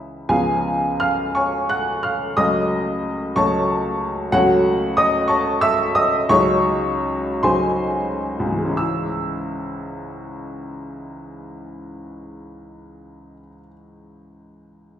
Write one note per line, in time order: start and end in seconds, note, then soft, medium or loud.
0.00 0.24 C#2 medium
0.00 0.25 E3 soft
0.00 0.25 G#3 soft
0.00 0.25 E4 soft
0.00 0.30 G#4 medium
0.00 0.32 C#5 medium
0.29 2.33 C#2 medium
0.29 2.33 F3 medium
0.29 2.33 B3 medium
0.29 2.33 C#4 medium
0.29 0.97 G#4 medium
0.29 0.97 F5 medium
0.29 1.00 G#5 loud
1.00 1.34 F5 medium
1.00 1.35 F6 loud
1.35 1.68 C#5 medium
1.35 1.68 G#5 medium
1.35 1.70 C#6 medium
1.69 2.02 F#5 medium
1.69 2.03 F#6 loud
2.03 2.35 F5 medium
2.03 2.37 F6 medium
2.37 3.33 C#2 medium
2.37 3.33 F#3 medium
2.37 3.33 A3 medium
2.37 3.33 C#4 medium
2.37 3.32 D#5 medium
2.37 3.36 D#6 loud
3.36 4.30 C#2 medium
3.36 4.30 F#3 medium
3.36 4.30 A3 medium
3.36 4.31 C#4 medium
3.36 4.30 C#5 medium
3.36 4.30 A5 medium
3.36 4.33 C#6 loud
4.32 6.25 C#2 medium
4.32 6.25 F#3 medium
4.32 6.26 A3 medium
4.32 6.26 C#4 medium
4.32 4.93 F#4 medium
4.32 4.93 C#5 medium
4.32 4.96 F#5 loud
4.97 5.27 D#5 medium
4.97 5.29 D#6 loud
5.28 5.60 C#5 medium
5.28 5.60 A5 medium
5.28 5.61 C#6 loud
5.61 5.93 E5 medium
5.61 5.95 E6 loud
5.95 6.28 D#5 medium
5.95 6.30 D#6 loud
6.29 7.40 C#2 medium
6.29 7.40 F#3 medium
6.29 7.41 G#3 medium
6.29 7.41 D#4 medium
6.29 7.40 C#5 loud
6.29 7.44 C#6 loud
7.43 8.38 C#2 medium
7.43 8.74 F#3 medium
7.43 8.57 G#3 medium
7.43 8.74 D#4 medium
7.43 8.74 C5 medium
7.43 8.74 G#5 medium
7.43 8.78 C6 loud
8.40 13.34 C#2 medium
8.46 13.40 G#2 medium
8.52 13.46 E3 medium
8.58 13.53 G#3 medium
8.65 13.59 C#4 medium
8.71 13.66 E4 medium
8.77 13.72 E6 medium